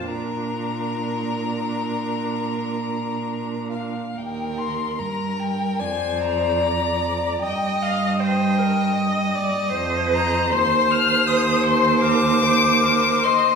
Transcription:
0.07 A#2 D4 A#4 A#5
3.71 F5
4.17 D#2 A#4 G5
4.58 C6
4.99 G2 A#4 A#5
5.40 G5
5.79 F2 C5 D5 G#5
6.20 A#5
6.62 D5
7.42 G2 D#5 G5
7.82 F5
8.20 C5 D#5 G5
8.58 A#4
8.97 D#5
9.35 D5
9.73 F2 C5
10.13 A#5
10.52 D#2 C5 C6
10.91 F6
11.27 C5 D#6
11.64 C6
12.02 A#4 D6
12.42 C5
12.84 A#4
13.24 D#5 C6

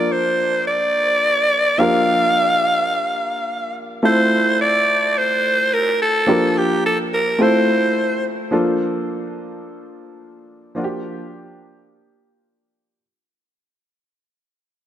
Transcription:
Already playing: F3 A#3 D4 F4 A4 A#4 D5
0.12 C5
0.67 D5
1.78 F3 A#3 D4 F4 G4 A#4 F5
4.03 A3 C4 E4 F4 A4 C5
4.61 D5
5.18 C5
5.74 A#4
6.02 A4
6.27 F3 A#3 D4 F4 G4 A#4
6.58 G4
6.86 A4
7.14 A#4
7.39 A3 C4 E4 F4 A4 C5
8.51 F3 A#3 D4 F4 A4
10.75 F3 A#3 D4 F4 F#4
10.84 G4

